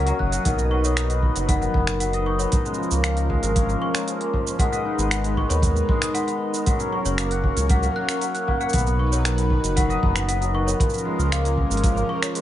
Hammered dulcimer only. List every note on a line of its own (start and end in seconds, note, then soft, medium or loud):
0.00 1.16 A#3 medium
0.00 3.15 C#4 medium
0.00 0.95 D#4 medium
0.00 0.32 F#4 medium
0.00 1.16 A#4 medium
0.00 2.22 C#5 medium
0.00 0.65 F#5 loud
0.07 0.51 F#3 loud
0.33 2.84 F#4 medium
0.45 1.47 D#3 medium
0.71 1.35 F#3 loud
0.84 2.13 D#5 loud
1.10 1.61 B3 medium
1.36 1.54 F#3 medium
1.49 1.73 D#3 medium
1.62 2.39 B3 medium
1.75 2.58 D#3 medium
2.00 2.57 F#3 medium
2.14 4.52 D#5 loud
2.27 4.85 D#4 medium
2.39 2.97 B3 medium
2.65 3.28 G#3 medium
2.78 3.02 F3 medium
2.91 3.68 A#3 medium
3.04 4.06 F3 medium
3.29 3.93 G#3 loud
3.43 5.05 A#4 loud
3.55 6.79 C#4 medium
3.69 4.20 A#3 medium
3.94 4.58 G#3 medium
4.07 4.33 F3 medium
4.21 5.05 A#3 medium
4.34 4.64 F3 medium
4.60 5.23 G#3 loud
4.72 6.01 D#5 loud
4.86 6.14 D#4 medium
4.99 5.50 B3 medium
5.24 5.42 G#3 medium
5.37 5.62 D#3 medium
5.50 6.27 B3 medium
5.63 6.71 D#3 medium
5.89 6.52 G#3 loud
6.02 8.39 D#5 loud
6.15 9.75 D#4 medium
6.28 7.24 B3 medium
6.53 6.71 G#3 medium
6.67 6.91 F#3 medium
6.79 7.57 C#4 medium
6.92 7.94 F#3 medium
7.18 7.83 A#3 loud
7.32 8.60 F#5 loud
7.44 10.69 F#4 medium
7.57 8.09 C#4 medium
7.83 8.47 A#3 medium
7.96 8.20 F#3 medium
8.09 11.95 C#4 medium
8.22 8.78 F#3 medium
8.47 8.79 A#3 loud
8.60 10.74 F#5 loud
8.73 8.86 B3 medium
8.86 9.37 B3 medium
9.12 9.30 F#3 medium
9.25 9.49 D#3 medium
9.38 10.02 B3 medium
9.51 10.53 D#3 medium
9.76 10.40 F#3 loud
9.90 12.27 D#5 loud
10.02 10.15 B3 medium
10.15 10.66 B3 medium
10.41 10.59 F#3 medium
10.54 10.85 D#3 medium
10.67 11.24 B3 medium
10.79 11.82 F3 medium
11.05 11.69 G#3 loud
11.18 12.41 A#4 loud
11.31 11.44 A#3 medium
11.45 11.96 A#3 medium
11.70 12.34 G#3 medium
11.83 12.08 F3 medium
11.96 12.41 A#3 medium
12.09 12.41 F3 medium
12.35 12.41 G#3 medium